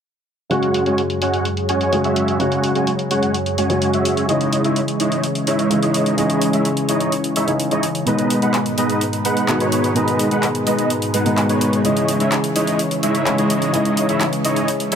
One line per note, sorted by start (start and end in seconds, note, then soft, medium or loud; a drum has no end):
0.50 4.25 F#2 medium
0.50 1.89 C#3 medium
0.50 1.90 F#3 medium
0.50 4.25 F#3 medium
0.50 0.84 G#3 medium
0.50 1.90 G#3 medium
0.50 0.84 C#4 medium
0.50 0.84 F#4 medium
0.50 1.90 F#4 medium
0.50 4.25 G#4 medium
0.50 0.84 C#5 medium
0.50 4.25 C#5 medium
0.50 0.84 F#5 medium
0.50 closed hi-hat medium
0.63 closed hi-hat soft
0.74 closed hi-hat medium
0.86 1.02 G#3 loud
0.86 1.02 C#4 medium
0.86 1.02 F#4 medium
0.86 1.02 C#5 medium
0.86 1.02 G#5 loud
0.86 closed hi-hat soft
0.98 closed hi-hat medium
1.10 closed hi-hat soft
1.22 1.46 G#3 medium
1.22 1.46 C#4 medium
1.22 1.46 F#4 medium
1.22 1.46 C#5 medium
1.22 1.46 F#5 medium
1.22 closed hi-hat medium
1.34 closed hi-hat soft
1.45 closed hi-hat medium
1.57 closed hi-hat soft
1.69 2.02 G#3 medium
1.69 2.02 C#4 medium
1.69 2.02 F#4 medium
1.69 2.02 C#5 medium
1.69 2.02 G#5 medium
1.69 closed hi-hat medium
1.81 closed hi-hat soft
1.92 2.37 C#3 medium
1.92 2.37 F#3 medium
1.92 2.37 G#3 medium
1.92 2.37 G#4 medium
1.92 closed hi-hat medium
2.04 2.37 G#3 medium
2.04 2.37 C#4 medium
2.04 2.37 F#4 medium
2.04 2.37 C#5 medium
2.04 2.37 E5 loud
2.04 closed hi-hat soft
2.16 closed hi-hat medium
2.28 closed hi-hat soft
2.39 3.66 C#3 medium
2.39 3.67 F#3 medium
2.39 2.73 G#3 medium
2.39 3.67 G#3 medium
2.39 2.73 C#4 medium
2.39 2.73 F#4 medium
2.39 3.68 F#4 medium
2.39 2.73 C#5 medium
2.39 2.72 F#5 medium
2.39 closed hi-hat medium
2.52 closed hi-hat soft
2.64 closed hi-hat medium
2.75 2.91 G#3 medium
2.75 2.91 C#4 medium
2.75 2.91 F#4 medium
2.75 2.91 C#5 medium
2.75 2.91 G#5 loud
2.75 closed hi-hat soft
2.87 closed hi-hat medium
2.99 closed hi-hat soft
3.11 3.35 G#3 medium
3.11 3.35 C#4 medium
3.11 3.35 F#4 medium
3.11 3.35 C#5 medium
3.11 3.35 F#5 medium
3.11 closed hi-hat medium
3.23 closed hi-hat soft
3.34 closed hi-hat medium
3.46 closed hi-hat soft
3.58 3.91 G#3 medium
3.58 3.91 C#4 medium
3.58 3.91 F#4 medium
3.58 3.91 C#5 medium
3.58 3.91 G#5 medium
3.58 closed hi-hat medium
3.69 3.82 C#3 medium
3.69 3.82 F#3 medium
3.69 3.82 G#3 medium
3.69 3.82 F#4 medium
3.69 closed hi-hat soft
3.82 closed hi-hat medium
3.93 4.26 G#3 medium
3.93 4.26 C#4 medium
3.93 4.26 F#4 medium
3.93 4.26 C#5 medium
3.93 4.26 E5 loud
3.93 closed hi-hat soft
4.05 closed hi-hat medium
4.17 closed hi-hat soft
4.28 5.67 C#3 medium
4.28 8.03 C#3 medium
4.28 5.68 E3 medium
4.28 8.03 E3 medium
4.28 14.95 G#3 medium
4.28 4.61 G#3 medium
4.28 5.68 G#3 medium
4.28 4.61 D#4 medium
4.28 4.61 E4 medium
4.28 8.03 C#5 medium
4.28 4.61 C#5 medium
4.28 4.61 D#5 medium
4.28 5.68 D#5 medium
4.28 closed hi-hat medium
4.41 closed hi-hat soft
4.53 closed hi-hat medium
4.64 4.80 G#3 medium
4.64 4.80 D#4 medium
4.64 4.80 E4 medium
4.64 4.80 C#5 medium
4.64 4.80 E5 loud
4.64 closed hi-hat soft
4.76 closed hi-hat medium
4.88 closed hi-hat soft
5.00 5.24 G#3 medium
5.00 5.24 D#4 medium
5.00 5.24 E4 medium
5.00 5.24 C#5 medium
5.00 5.24 D#5 medium
5.00 closed hi-hat medium
5.12 closed hi-hat soft
5.24 closed hi-hat medium
5.35 closed hi-hat soft
5.47 5.80 G#3 medium
5.47 5.80 D#4 medium
5.47 5.80 E4 medium
5.47 5.80 C#5 medium
5.47 5.80 E5 medium
5.47 closed hi-hat medium
5.59 closed hi-hat soft
5.70 6.15 C#3 medium
5.70 6.15 E3 medium
5.70 6.15 G#3 medium
5.70 closed hi-hat medium
5.82 6.15 G#3 medium
5.82 6.15 D#4 medium
5.82 6.15 E4 medium
5.82 6.15 C#5 medium
5.82 6.15 D#5 loud
5.82 closed hi-hat soft
5.94 closed hi-hat medium
6.06 closed hi-hat soft
6.17 7.44 C#3 medium
6.17 7.45 E3 medium
6.17 6.51 G#3 medium
6.17 7.45 G#3 medium
6.17 6.50 D#4 medium
6.17 6.50 E4 medium
6.17 6.51 C#5 medium
6.17 6.50 D#5 medium
6.17 7.46 D#5 medium
6.17 closed hi-hat medium
6.30 closed hi-hat soft
6.42 closed hi-hat medium
6.53 6.69 G#3 loud
6.53 6.69 D#4 medium
6.53 6.69 E4 medium
6.53 6.69 C#5 medium
6.53 6.69 E5 loud
6.53 closed hi-hat soft
6.65 closed hi-hat medium
6.77 closed hi-hat soft
6.89 7.13 G#3 medium
6.89 7.13 D#4 medium
6.89 7.13 E4 medium
6.89 7.13 C#5 medium
6.89 7.13 D#5 medium
6.89 closed hi-hat medium
7.00 closed hi-hat soft
7.12 closed hi-hat medium
7.24 closed hi-hat soft
7.36 7.51 G#3 medium
7.36 7.51 D#4 medium
7.36 7.51 E4 medium
7.36 7.51 C#5 medium
7.36 7.51 E5 medium
7.36 closed hi-hat medium
7.47 7.60 C#3 medium
7.47 7.60 E3 medium
7.47 7.60 G#3 medium
7.47 7.60 D#4 medium
7.47 closed hi-hat soft
7.60 closed hi-hat medium
7.71 7.87 G#3 medium
7.71 7.87 D#4 medium
7.71 7.87 E4 medium
7.71 7.87 C#5 medium
7.71 7.87 D#5 medium
7.71 closed hi-hat soft
7.83 closed hi-hat medium
7.95 closed hi-hat soft
8.06 11.81 G#2 medium
8.06 9.45 B2 medium
8.06 9.46 D#3 medium
8.06 8.40 G#3 medium
8.06 9.46 G#3 medium
8.06 8.40 B3 medium
8.06 11.81 D#4 medium
8.06 8.40 D#4 medium
8.06 9.46 D#4 medium
8.06 11.81 B4 medium
8.06 8.39 B4 medium
8.06 8.39 D#5 medium
8.06 closed hi-hat medium
8.19 closed hi-hat soft
8.30 closed hi-hat medium
8.42 8.58 G#3 medium
8.42 8.58 B3 medium
8.42 8.58 D#4 medium
8.42 8.58 B4 medium
8.42 8.58 F#5 loud
8.42 closed hi-hat soft
8.54 clap loud
8.54 closed hi-hat medium
8.66 closed hi-hat soft
8.78 9.02 G#3 medium
8.78 9.02 B3 medium
8.78 9.02 D#4 medium
8.78 9.02 B4 medium
8.78 9.02 D#5 medium
8.78 closed hi-hat medium
8.90 closed hi-hat soft
9.01 closed hi-hat medium
9.13 closed hi-hat soft
9.25 9.58 G#3 medium
9.25 9.58 B3 medium
9.25 9.58 D#4 medium
9.25 9.58 B4 medium
9.25 9.58 F#5 loud
9.25 closed hi-hat medium
9.37 closed hi-hat soft
9.48 9.93 B2 medium
9.48 9.93 D#3 medium
9.48 9.93 G#3 medium
9.48 9.93 F#4 medium
9.48 clap loud
9.48 closed hi-hat medium
9.60 9.93 G#3 medium
9.60 9.93 B3 medium
9.60 9.93 D#4 medium
9.60 9.93 B4 medium
9.60 9.93 C#5 loud
9.60 closed hi-hat soft
9.72 closed hi-hat medium
9.84 closed hi-hat soft
9.95 11.22 B2 medium
9.95 11.23 D#3 medium
9.95 10.28 G#3 medium
9.95 11.23 G#3 medium
9.95 10.28 B3 medium
9.95 10.28 D#4 medium
9.95 11.23 D#4 medium
9.95 10.28 B4 medium
9.95 10.28 D#5 medium
9.95 closed hi-hat medium
10.08 closed hi-hat soft
10.19 closed hi-hat medium
10.31 10.47 G#3 medium
10.31 10.47 B3 medium
10.31 10.47 D#4 medium
10.31 10.47 B4 medium
10.31 10.47 F#5 loud
10.31 closed hi-hat soft
10.43 clap loud
10.43 closed hi-hat medium
10.55 closed hi-hat soft
10.67 10.91 G#3 medium
10.67 10.91 B3 medium
10.67 10.91 D#4 medium
10.67 10.91 B4 medium
10.67 10.91 D#5 medium
10.67 closed hi-hat medium
10.79 closed hi-hat soft
10.90 closed hi-hat medium
11.02 closed hi-hat soft
11.14 11.46 G#3 medium
11.14 11.46 B3 medium
11.14 11.46 D#4 medium
11.14 11.46 B4 medium
11.14 11.46 F#5 medium
11.14 closed hi-hat medium
11.25 11.38 B2 medium
11.25 11.38 D#3 medium
11.25 11.38 G#3 medium
11.25 11.38 D#4 medium
11.25 closed hi-hat soft
11.37 clap loud
11.37 closed hi-hat medium
11.49 11.82 G#3 medium
11.49 11.82 B3 medium
11.49 11.82 D#4 medium
11.49 11.82 B4 medium
11.49 11.82 C#5 loud
11.49 closed hi-hat soft
11.61 closed hi-hat medium
11.73 closed hi-hat soft
11.84 13.23 C#3 medium
11.84 14.95 C#3 medium
11.84 13.24 E3 medium
11.84 14.95 E3 medium
11.84 12.17 G#3 medium
11.84 13.24 G#3 medium
11.84 12.17 D#4 medium
11.84 12.17 E4 medium
11.84 12.17 C#5 medium
11.84 14.95 C#5 medium
11.84 12.17 D#5 medium
11.84 13.24 D#5 medium
11.84 closed hi-hat medium
11.97 closed hi-hat soft
12.08 closed hi-hat medium
12.20 12.35 G#3 loud
12.20 12.35 D#4 medium
12.20 12.35 E4 medium
12.20 12.35 C#5 medium
12.20 12.35 E5 loud
12.20 closed hi-hat soft
12.32 clap loud
12.32 closed hi-hat medium
12.44 closed hi-hat soft
12.56 12.80 G#3 medium
12.56 12.80 D#4 medium
12.56 12.80 E4 medium
12.56 12.80 C#5 medium
12.56 12.80 D#5 medium
12.56 closed hi-hat medium
12.67 closed hi-hat soft
12.79 closed hi-hat medium
12.91 closed hi-hat soft
13.03 13.35 G#3 medium
13.03 13.35 D#4 medium
13.03 13.35 E4 medium
13.03 13.35 C#5 medium
13.03 13.35 E5 loud
13.03 closed hi-hat medium
13.15 closed hi-hat soft
13.26 13.71 C#3 medium
13.26 13.71 E3 medium
13.26 13.71 G#3 medium
13.26 clap loud
13.26 closed hi-hat medium
13.38 13.71 G#3 medium
13.38 13.71 D#4 medium
13.38 13.71 E4 medium
13.38 13.71 C#5 medium
13.38 13.71 D#5 loud
13.38 closed hi-hat soft
13.50 closed hi-hat medium
13.62 closed hi-hat soft
13.73 14.95 C#3 medium
13.73 14.95 E3 medium
13.73 14.06 G#3 medium
13.73 14.95 G#3 medium
13.73 14.06 D#4 medium
13.73 14.06 E4 medium
13.73 14.06 C#5 medium
13.73 14.06 D#5 medium
13.73 14.95 D#5 medium
13.73 closed hi-hat medium
13.85 closed hi-hat soft
13.97 closed hi-hat medium
14.09 14.25 G#3 loud
14.09 14.25 D#4 medium
14.09 14.25 E4 medium
14.09 14.25 C#5 medium
14.09 14.25 E5 loud
14.09 closed hi-hat soft
14.20 clap loud
14.20 closed hi-hat medium
14.33 closed hi-hat soft
14.45 14.69 G#3 medium
14.45 14.69 D#4 medium
14.45 14.69 E4 medium
14.45 14.69 C#5 medium
14.45 14.69 D#5 medium
14.45 closed hi-hat medium
14.56 closed hi-hat soft
14.68 closed hi-hat medium
14.80 closed hi-hat soft
14.92 14.95 G#3 medium
14.92 14.95 D#4 medium
14.92 14.95 E4 medium
14.92 14.95 C#5 medium
14.92 14.95 E5 medium
14.92 closed hi-hat medium